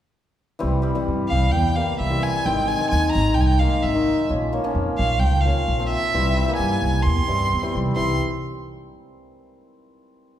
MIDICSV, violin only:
0, 0, Header, 1, 2, 480
1, 0, Start_track
1, 0, Tempo, 459418
1, 637, Time_signature, 4, 2, 24, 8
1, 10859, End_track
2, 0, Start_track
2, 0, Title_t, "Violin"
2, 0, Program_c, 0, 40
2, 1342, Note_on_c, 0, 77, 72
2, 1583, Note_on_c, 0, 79, 73
2, 1599, Note_off_c, 0, 77, 0
2, 1837, Note_on_c, 0, 77, 65
2, 1853, Note_off_c, 0, 79, 0
2, 2075, Note_off_c, 0, 77, 0
2, 2081, Note_on_c, 0, 76, 76
2, 2330, Note_on_c, 0, 80, 83
2, 2345, Note_off_c, 0, 76, 0
2, 2567, Note_on_c, 0, 79, 75
2, 2582, Note_off_c, 0, 80, 0
2, 2799, Note_on_c, 0, 80, 77
2, 2815, Note_off_c, 0, 79, 0
2, 3024, Note_off_c, 0, 80, 0
2, 3030, Note_on_c, 0, 80, 92
2, 3248, Note_off_c, 0, 80, 0
2, 3254, Note_on_c, 0, 82, 86
2, 3492, Note_on_c, 0, 79, 73
2, 3508, Note_off_c, 0, 82, 0
2, 3560, Note_on_c, 0, 80, 63
2, 3576, Note_off_c, 0, 79, 0
2, 3615, Note_on_c, 0, 79, 86
2, 3631, Note_off_c, 0, 80, 0
2, 3756, Note_on_c, 0, 77, 72
2, 3772, Note_off_c, 0, 79, 0
2, 3998, Note_on_c, 0, 76, 65
2, 4013, Note_off_c, 0, 77, 0
2, 4478, Note_off_c, 0, 76, 0
2, 5198, Note_on_c, 0, 77, 70
2, 5424, Note_on_c, 0, 79, 68
2, 5440, Note_off_c, 0, 77, 0
2, 5652, Note_on_c, 0, 77, 64
2, 5668, Note_off_c, 0, 79, 0
2, 6119, Note_off_c, 0, 77, 0
2, 6125, Note_on_c, 0, 76, 86
2, 6825, Note_off_c, 0, 76, 0
2, 6853, Note_on_c, 0, 80, 73
2, 7343, Note_on_c, 0, 84, 79
2, 7359, Note_off_c, 0, 80, 0
2, 8076, Note_off_c, 0, 84, 0
2, 8319, Note_on_c, 0, 84, 74
2, 8546, Note_off_c, 0, 84, 0
2, 10859, End_track
0, 0, End_of_file